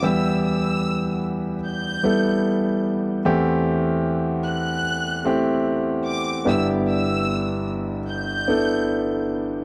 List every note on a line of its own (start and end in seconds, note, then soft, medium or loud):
0.03 3.20 E2 medium
0.03 3.20 E3 medium
0.03 1.55 G3 medium
0.03 1.55 B3 medium
0.03 1.56 E4 medium
0.03 1.56 G4 medium
0.03 0.44 E6 loud
0.45 1.20 E6 loud
1.65 2.81 G6 loud
2.04 3.18 G3 medium
2.04 3.18 B3 medium
2.04 3.19 E4 medium
2.04 3.19 A4 medium
3.25 6.42 E2 medium
3.25 6.42 E3 medium
3.25 4.77 A3 loud
3.25 4.77 C4 medium
3.25 4.77 E4 medium
3.25 4.78 G4 loud
4.45 5.61 F#6 loud
5.25 6.40 A3 medium
5.25 6.40 C4 medium
5.25 6.40 E4 medium
5.25 6.41 G4 medium
6.06 6.43 D6 loud
6.45 9.64 G1 medium
6.45 9.64 G2 medium
6.45 7.99 B3 medium
6.45 7.99 D4 medium
6.45 7.99 E4 medium
6.45 7.99 G4 medium
6.45 6.66 E6 loud
6.89 7.64 E6 loud
8.07 9.26 G6 loud
8.48 9.64 B3 medium
8.48 9.64 D4 medium
8.48 9.64 E4 medium
8.48 9.64 A4 medium